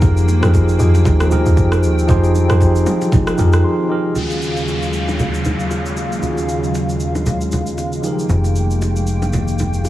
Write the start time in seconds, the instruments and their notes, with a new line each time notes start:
Already playing: analog synth pad D#3 G#3 A#3 G5, tine electric piano F3 D#4 G4 G#4 A#4
0.02 log drum bass F2, kick, low conga, shaker
0.17 shaker
0.28 low bongo, shaker
0.41 log drum bass F2, tine electric piano F3 D#4 G4 G#4 A#4, cross-stick, low bongo, shaker
0.54 kick, high bongo, shaker
0.69 shaker
0.78 log drum bass F2, tine electric piano F3 D#4 G4 G#4 C5, shaker
0.95 low bongo, shaker
1.05 log drum bass D#2, kick, low conga, shaker
1.20 cross-stick, shaker
1.30 tine electric piano F3 D#4 G4 G#4 A#4, low bongo, low conga, shaker
1.46 log drum bass D#2, shaker
1.57 log drum bass F2, kick, high bongo, shaker
1.72 cross-stick, shaker
1.83 log drum bass D#2, analog synth pad C4, shaker
1.99 shaker
2.07 log drum bass F2, tine electric piano F3 D#4 G4 G#4 C5, kick, low conga, shaker
2.24 high bongo, shaker
2.35 low bongo, shaker
2.48 log drum bass F2, tine electric piano F3 D#4 G4 G#4 C5, cross-stick, low bongo, shaker
2.61 kick, high bongo, shaker
2.76 shaker
2.86 log drum bass F3, shaker
3.01 low bongo, shaker
3.12 kick, low conga, shaker
3.27 cross-stick, shaker
3.37 log drum bass F2, tine electric piano F3 D#4 G4 G#4 A#4, low bongo, low conga, shaker
3.53 cross-stick, shaker
3.64 tine electric piano C6
3.88 tine electric piano F3 D#4 G4 G#4 A#4
4.13 analog synth pad D#2 C#3 F#3 G#3 F5, tine electric piano D#3 C#4 F4, downlifter, low conga, shaker
4.17 tine electric piano F#4 G#4
4.31 high bongo, shaker
4.42 shaker
4.57 shaker
4.68 high bongo, shaker
4.82 shaker
4.93 shaker
5.08 low bongo, shaker
5.19 low conga, shaker
5.34 shaker
5.45 low bongo, low conga, shaker
5.60 shaker
5.71 high bongo, shaker
5.86 shaker
5.97 high bongo, shaker
6.12 shaker
6.19 tine electric piano D#3 C#4 F4, low conga, shaker
6.24 tine electric piano F#4 G#4
6.37 high bongo, shaker
6.49 shaker
6.64 shaker
6.75 high bongo, shaker
6.89 shaker
7.00 shaker
7.15 low bongo, shaker
7.26 low conga, shaker
7.41 shaker
7.52 low bongo, low conga, shaker
7.67 shaker
7.78 high bongo, shaker
7.93 shaker
8.00 analog synth pad D#3 A#3 G5, tine electric piano F3 D#4 G4, high bongo, shaker
8.05 tine electric piano G#4 A#4
8.19 shaker
8.29 analog synth bass F1, low conga, shaker
8.44 high bongo, shaker
8.56 shaker
8.71 shaker
8.82 high bongo, shaker
8.96 shaker
9.07 shaker
9.22 low bongo, shaker
9.33 low conga, shaker
9.48 shaker
9.59 low bongo, low conga, shaker
9.73 shaker
9.85 high bongo, shaker